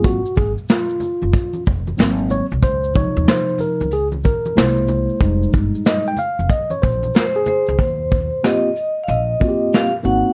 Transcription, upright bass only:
X:1
M:4/4
L:1/16
Q:"Swing 16ths" 1/4=93
K:Ebmix
V:1 name="Upright bass" clef=bass
A,,,2 A,,, z4 _G,,, z2 F,,,2 A,,,3 C,, | D,,3 E,, z3 D,,4 z C,,4 | F,,,2 G,,, z4 F,,, z2 B,,,2 z3 D,, | E,,4 z4 B,,,2 z4 A,,, z |]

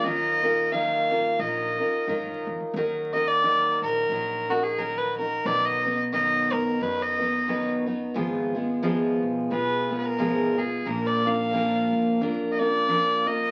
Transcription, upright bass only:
X:1
M:4/4
L:1/16
Q:"Swing" 1/4=89
K:Ebm
V:1 name="Upright bass" clef=bass
E,,8 B,,,2 z2 A,, G,, F,, E,, | E,,6 B,,,2 B,,,8 | =B,,,6 ^F,,2 F,,8 | A,,,6 C,,2 C,,8 |
B,,,6 F,,2 F,,8 |]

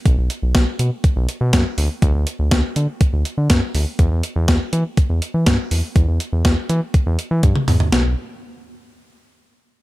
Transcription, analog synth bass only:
X:1
M:4/4
L:1/16
Q:1/4=122
K:Edor
V:1 name="Analog synth bass" clef=bass
B,,, B,,, z B,,, B,,, z B,, z2 B,,, z B,, F,, z D,, z | D,, D,, z D,, D,, z D, z2 D,, z D, F,, z D,, z | E,, E,, z E,, E,, z E, z2 E,, z E, G,, z E,, z | E,, E,, z E,, E,, z E, z2 E,, z E, G,, z E,, z |
B,,,2 z12 z2 |]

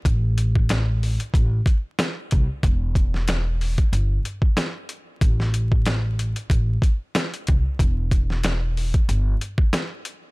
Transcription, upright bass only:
X:1
M:4/4
L:1/16
Q:"Swing 16ths" 1/4=93
K:Ador
V:1 name="Upright bass" clef=bass
A,,,6- A,,, z A,,,2 z4 C,, z | E,,,6- E,,, z G,,,2 z6 | A,,,6- A,,, z A,,,2 z4 C,, z | E,,,6- E,,, z G,,,2 z6 |]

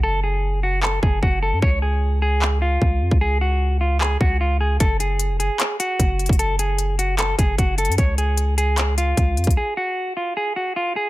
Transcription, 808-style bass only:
X:1
M:4/4
L:1/16
Q:1/4=151
K:F#m
V:1 name="808-style bass" clef=bass
F,,,8- F,,,2 F,,,2 F,,,3 F,, | C,,12 C,,2 ^E,, C,,- | C,,8- C,,2 C,,6 | F,,,4- F,,, ^E,,, F,,, z4 z F,,,3 F,,,- |
F,,,8- F,,,2 F,,,2 F,,,3 F,, | C,,12 C,,2 ^E,, C,, | z16 |]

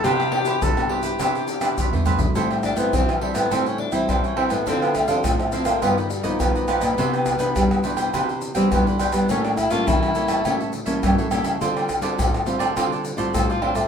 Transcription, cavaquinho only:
X:1
M:4/4
L:1/16
Q:1/4=104
K:C
V:1 name="Cavaquinho"
[GBce] [Bce] z [Bce]3 [GBce] [Bce] [GBce] [Bce] z [Bce] [GBce] [Bce] [GBce] [Bce] | [K:Am] [Aceg] [ceg] z [ceg]3 [Aceg] [ceg] [Aceg] [ceg] z [ceg] [Aceg] [ceg] [Aceg] [ceg] | [DAcf] [Acf] z [Acf]3 [DAcf] [Acf] [FGB^d] [GBd] z [GBd] [FGBd] [GBd] [FGBd] [GBd] | [EBcg] [Bcg] z [Bg]3 [EBcg] [Bcg] [EBcg] [Bcg] z [Bcg] [EBcg] [Bcg] [EBcg] [Bcg] |
[GA^ce] [Ace] z [Ace]3 [GAce] [Ace] [GAce] [Ace] z [Ace] [GAce] [Ace] [GAce] [Ace] | [FAcd] [Acd] z [Acd]3 [FAcd] [Acd] [FAcd] [Acd] z [Acd] [FAcd] [Acd] [FAcd] [Acd] |]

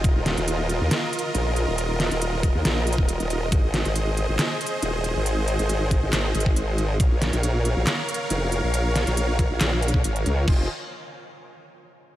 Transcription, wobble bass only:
X:1
M:4/4
L:1/16
Q:"Swing 16ths" 1/4=138
K:Fm
V:1 name="Wobble bass" clef=bass
E,,, E,,,2 E,,,4 E,, z4 B,,,3 E,,,- | E,,,3 E,,,4 E,, B,,,3 E,,,2 E,,,3 | A,,, A,,,2 A,,,4 A,,, z4 E,,,3 A,,,- | A,,,3 A,,,4 A,,, A,,,2 A,,,6 |
B,,, B,,,2 B,,,4 B,,, z4 F,,,3 B,,,- | B,,,3 B,,,4 B,,, B,,,3 B,,, A,,,2 D,,2 | F,,,2 z12 z2 |]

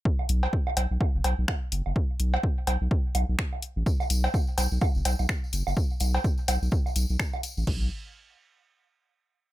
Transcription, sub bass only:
X:1
M:4/4
L:1/16
Q:"Swing 16ths" 1/4=126
K:Clyd
V:1 name="Sub bass" clef=bass
z2 B,,, z3 B,,, B,,, z F,,, B,,, B,,, z2 F,,, F,,, | z2 B,,, z3 B,,, B,,, z2 B,,, B,,, z3 A,,, | z2 B,,, z3 B,,, B,,, z F,,, B,,, B,,, z2 F,,, F,,, | z2 B,,, z3 B,,, B,,, z2 B,,, B,,, z3 A,,, |
B,,,2 z12 z2 |]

